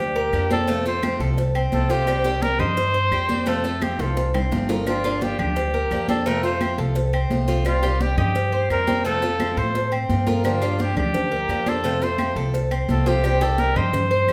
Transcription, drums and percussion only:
0.16 high conga soft
0.33 cowbell medium
0.33 high conga soft
0.33 claves medium
0.51 cowbell medium
0.51 high conga medium
0.68 cowbell medium
0.68 high conga soft
0.86 cowbell medium
0.86 high conga soft
1.03 cowbell medium
1.03 high conga medium
1.03 claves medium
1.20 cowbell medium
1.20 high conga soft
1.38 cowbell loud
1.38 high conga soft
1.55 high conga soft
1.55 claves medium
1.72 cowbell medium
1.72 high conga medium
1.90 cowbell medium
2.07 cowbell loud
2.07 high conga soft
2.07 claves medium
2.25 cowbell medium
2.25 high conga soft
2.42 cowbell medium
2.42 high conga medium
2.60 high conga soft
2.60 low conga medium
2.60 claves medium
2.77 cowbell loud
2.77 high conga soft
2.95 high conga soft
3.12 cowbell medium
3.12 high conga soft
3.12 claves medium
3.29 cowbell medium
3.29 high conga medium
3.47 cowbell medium
3.47 high conga soft
3.65 cowbell medium
3.65 high conga soft
3.82 cowbell medium
3.82 high conga medium
3.82 claves medium
4.00 cowbell medium
4.00 high bongo medium
4.00 high conga soft
4.17 cowbell loud
4.17 high bongo medium
4.17 high conga soft
4.34 low bongo medium
4.34 high conga soft
4.34 claves medium
4.52 cowbell medium
4.52 low bongo medium
4.52 high conga medium
4.70 cowbell medium
4.70 low bongo medium
4.87 cowbell loud
4.87 high conga soft
4.87 claves medium
5.05 cowbell medium
5.05 high conga soft
5.22 cowbell medium
5.22 high conga medium
5.39 high conga soft
5.39 low conga medium
5.39 claves medium
5.57 cowbell loud
5.57 high conga soft
5.74 high conga soft
5.91 cowbell medium
5.91 high conga soft
5.91 claves medium
6.08 cowbell medium
6.08 high conga medium
6.26 cowbell loud
6.26 high conga soft
6.44 cowbell medium
6.44 high conga soft
6.61 cowbell medium
6.61 high conga medium
6.61 claves medium
6.78 cowbell medium
6.78 high conga soft
6.96 cowbell loud
6.96 high conga soft
7.13 high conga soft
7.13 claves medium
7.31 cowbell medium
7.31 high conga medium
7.49 cowbell medium
7.66 cowbell loud
7.66 high conga soft
7.66 claves medium
7.83 cowbell medium
7.83 high conga soft
8.00 cowbell medium
8.00 high conga medium
8.18 high conga soft
8.18 low conga medium
8.18 claves medium
8.36 cowbell loud
8.36 high conga soft
8.53 high conga soft
8.70 cowbell medium
8.70 high conga soft
8.70 claves medium
8.88 cowbell medium
8.88 high conga medium
9.05 cowbell loud
9.05 high conga soft
9.22 cowbell medium
9.22 high conga soft
9.40 cowbell medium
9.40 high conga medium
9.40 claves medium
9.57 cowbell medium
9.57 high conga soft
9.75 cowbell loud
9.75 high conga soft
9.92 high conga soft
9.92 claves medium
10.09 cowbell medium
10.09 high conga medium
10.27 cowbell medium
10.27 high conga medium
10.44 cowbell loud
10.44 high conga soft
10.44 claves medium
10.62 cowbell medium
10.62 high conga soft
10.80 cowbell medium
10.80 high conga medium
10.97 high conga soft
10.97 low conga medium
10.97 claves medium
11.14 cowbell medium
11.14 high conga soft
11.14 low conga medium
11.32 high conga soft
11.49 cowbell medium
11.49 high conga soft
11.49 claves medium
11.66 cowbell medium
11.66 high conga medium
11.84 cowbell loud
11.84 high conga soft
12.01 cowbell medium
12.01 high conga soft
12.18 cowbell medium
12.18 high conga medium
12.18 claves medium
12.36 cowbell medium
12.36 high conga soft
12.54 cowbell loud
12.54 high conga soft
12.71 high conga soft
12.71 claves medium
12.89 cowbell medium
12.89 high conga medium
13.06 cowbell medium
13.24 cowbell loud
13.24 high conga soft
13.24 claves medium
13.41 cowbell medium
13.41 high conga soft
13.58 cowbell medium
13.58 high conga medium
13.76 high conga soft
13.76 low conga medium
13.76 claves medium
13.93 cowbell medium
13.93 high conga soft
13.93 low conga medium
14.11 high conga soft
14.28 cowbell medium
14.28 high conga soft
14.28 claves medium

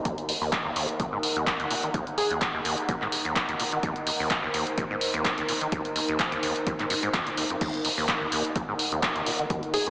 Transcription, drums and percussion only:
0.05 kick loud
0.05 closed hi-hat medium
0.18 closed hi-hat soft
0.29 open hi-hat loud
0.52 kick loud
0.52 clap loud
0.52 closed hi-hat medium
0.76 open hi-hat medium
0.89 closed hi-hat soft
1.00 kick loud
1.00 closed hi-hat medium
1.23 open hi-hat loud
1.36 closed hi-hat soft
1.47 kick loud
1.47 clap loud
1.47 closed hi-hat medium
1.60 closed hi-hat soft
1.71 open hi-hat medium
1.83 closed hi-hat soft
1.94 kick loud
1.94 closed hi-hat medium
2.07 closed hi-hat soft
2.18 open hi-hat loud
2.31 closed hi-hat soft
2.41 kick loud
2.41 clap loud
2.41 closed hi-hat medium
2.65 open hi-hat medium
2.78 closed hi-hat soft
2.89 kick loud
2.89 closed hi-hat medium
3.02 clap soft
3.12 open hi-hat loud
3.25 closed hi-hat soft
3.36 kick medium
3.36 clap loud
3.36 closed hi-hat medium
3.49 closed hi-hat soft
3.60 open hi-hat medium
3.72 closed hi-hat soft
3.83 kick loud
3.83 closed hi-hat medium
3.96 closed hi-hat soft
4.07 open hi-hat loud
4.30 kick loud
4.30 clap loud
4.30 closed hi-hat medium
4.54 open hi-hat medium
4.67 closed hi-hat medium
4.78 kick loud
4.78 closed hi-hat medium
5.01 open hi-hat loud
5.14 closed hi-hat soft
5.25 kick loud
5.25 clap loud
5.25 closed hi-hat medium
5.38 closed hi-hat soft
5.49 open hi-hat medium
5.61 closed hi-hat soft
5.72 kick loud
5.72 closed hi-hat medium
5.85 closed hi-hat soft
5.96 open hi-hat medium
6.08 closed hi-hat soft
6.19 kick loud
6.19 clap loud
6.19 closed hi-hat medium
6.32 closed hi-hat soft
6.43 open hi-hat medium
6.56 closed hi-hat medium
6.67 kick loud
6.67 closed hi-hat medium
6.79 clap soft
6.79 closed hi-hat soft
6.90 open hi-hat loud
7.03 closed hi-hat medium
7.14 kick loud
7.14 clap loud
7.14 closed hi-hat medium
7.27 closed hi-hat soft
7.37 open hi-hat medium
7.50 closed hi-hat soft
7.61 kick loud
7.61 closed hi-hat medium
7.61 crash medium
7.74 closed hi-hat soft
7.85 open hi-hat loud
8.08 kick loud
8.08 clap loud
8.08 closed hi-hat medium
8.32 open hi-hat medium
8.45 closed hi-hat medium
8.56 kick loud
8.56 closed hi-hat medium
8.79 open hi-hat loud
8.92 closed hi-hat soft
9.03 kick loud
9.03 clap loud
9.03 closed hi-hat medium
9.16 closed hi-hat soft
9.26 open hi-hat medium
9.39 closed hi-hat soft
9.50 kick loud
9.50 closed hi-hat medium
9.63 closed hi-hat soft
9.74 open hi-hat loud
9.86 closed hi-hat soft

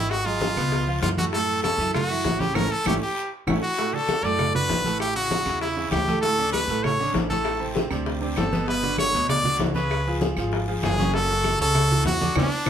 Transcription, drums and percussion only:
0.11 high bongo medium
0.11 long guiro medium
0.11 claves medium
0.27 high conga soft
0.41 high bongo medium
0.41 high conga medium
0.41 short guiro medium
0.57 high bongo soft
0.57 high conga soft
0.57 short guiro medium
0.57 claves medium
0.72 high bongo medium
0.72 high conga soft
0.72 long guiro medium
0.87 high bongo soft
0.87 high conga soft
1.02 high bongo medium
1.02 low bongo medium
1.02 high conga medium
1.02 short guiro medium
1.02 claves medium
1.18 high bongo soft
1.18 high conga medium
1.18 short guiro medium
1.33 high bongo medium
1.33 high conga soft
1.33 long guiro medium
1.49 high conga soft
1.64 high bongo medium
1.64 high conga medium
1.64 short guiro medium
1.64 claves medium
1.79 high conga soft
1.79 short guiro medium
1.94 high bongo medium
1.94 high conga soft
1.94 low conga medium
1.94 long guiro medium
1.94 claves medium
2.10 high conga soft
2.25 high bongo medium
2.25 low bongo medium
2.25 high conga medium
2.25 short guiro medium
2.40 high conga medium
2.40 short guiro medium
2.55 low bongo loud
2.55 high conga loud
2.55 long guiro medium
2.55 claves loud
2.86 low bongo loud
2.86 high conga medium
2.86 long guiro loud
2.86 claves loud
3.47 low bongo loud
3.47 high conga loud
3.47 long guiro medium
3.47 claves loud
3.78 high bongo medium
3.78 high conga soft
3.78 long guiro medium
3.94 high conga soft
4.09 high bongo medium
4.09 high conga medium
4.09 short guiro medium
4.09 claves medium
4.24 high conga soft
4.24 short guiro medium
4.39 high bongo medium
4.39 high conga soft
4.39 low conga medium
4.39 long guiro medium
4.39 claves medium
4.55 high conga soft
4.55 low conga medium
4.70 high bongo medium
4.70 low bongo medium
4.70 high conga medium
4.70 short guiro medium
4.85 high conga medium
4.85 short guiro medium
5.00 high bongo medium
5.00 high conga soft
5.00 long guiro medium
5.00 claves medium
5.16 high conga soft
5.31 high bongo medium
5.31 high conga medium
5.31 short guiro medium
5.46 high bongo soft
5.46 high conga soft
5.46 short guiro medium
5.46 claves medium
5.62 high bongo medium
5.62 high conga soft
5.62 long guiro medium
5.77 high bongo soft
5.77 high conga soft
5.92 high bongo medium
5.92 low bongo medium
5.92 high conga medium
5.92 short guiro medium
5.92 claves medium
6.07 high bongo soft
6.07 high conga medium
6.07 short guiro medium
6.23 high bongo medium
6.23 high conga soft
6.39 high conga soft
6.53 high bongo medium
6.53 high conga medium
6.53 short guiro medium
6.53 claves medium
6.69 high conga soft
6.69 short guiro medium
6.84 high bongo medium
6.84 high conga soft
6.84 low conga medium
6.84 long guiro medium
6.84 claves medium
7.00 high conga soft
7.14 high bongo medium
7.14 low bongo medium
7.14 high conga medium
7.14 short guiro medium
7.30 high conga medium
7.30 short guiro medium
7.45 high bongo medium
7.45 high conga soft
7.45 long guiro medium
7.45 claves medium
7.61 high conga soft
7.75 high bongo medium
7.75 high conga medium
7.75 short guiro medium
7.91 high bongo soft
7.91 high conga soft
7.91 short guiro medium
7.91 claves medium
8.06 high bongo medium
8.06 high conga soft
8.06 long guiro medium
8.22 high bongo soft
8.22 high conga soft
8.36 high bongo medium
8.36 low bongo medium
8.36 high conga medium
8.36 short guiro medium
8.36 claves medium
8.52 high bongo soft
8.52 high conga medium
8.52 short guiro medium
8.67 high bongo medium
8.67 high conga soft
8.67 long guiro medium
8.84 high conga soft
8.98 high bongo medium
8.98 high conga medium
8.98 short guiro medium
8.98 claves medium
9.13 high conga soft
9.13 short guiro medium
9.29 high bongo medium
9.29 high conga soft
9.29 low conga medium
9.29 long guiro medium
9.29 claves medium
9.44 high conga soft
9.44 low conga medium
9.59 high bongo medium
9.59 low bongo medium
9.59 high conga medium
9.59 short guiro medium
9.75 high conga medium
9.75 short guiro medium
9.90 high bongo medium
9.90 high conga soft
9.90 long guiro medium
9.90 claves medium
10.06 high conga soft
10.21 high bongo medium
10.21 high conga loud
10.21 short guiro medium
10.37 high bongo soft
10.37 high conga soft
10.37 short guiro medium
10.37 claves medium
10.52 high bongo medium
10.52 high conga soft
10.52 long guiro medium
10.68 high bongo soft
10.68 high conga soft
10.83 high bongo medium
10.83 low bongo medium
10.83 high conga medium
10.83 short guiro medium
10.83 claves medium
10.98 high bongo soft
10.98 high conga medium
10.98 short guiro medium
11.13 high bongo medium
11.13 high conga soft
11.13 long guiro medium
11.30 high conga soft
11.44 high bongo medium
11.44 high conga medium
11.44 short guiro medium
11.44 claves medium
11.59 high conga soft
11.59 short guiro medium
11.75 high bongo medium
11.75 high conga soft
11.75 low conga medium
11.75 claves medium
11.91 high conga soft
11.91 low conga medium
12.06 high bongo medium
12.06 low bongo medium
12.06 high conga medium
12.06 short guiro medium
12.20 high conga medium
12.20 short guiro medium
12.36 low bongo loud
12.36 low conga loud
12.36 long guiro loud
12.36 claves loud
12.66 low bongo loud
12.66 low conga loud
12.66 long guiro loud
12.66 claves loud

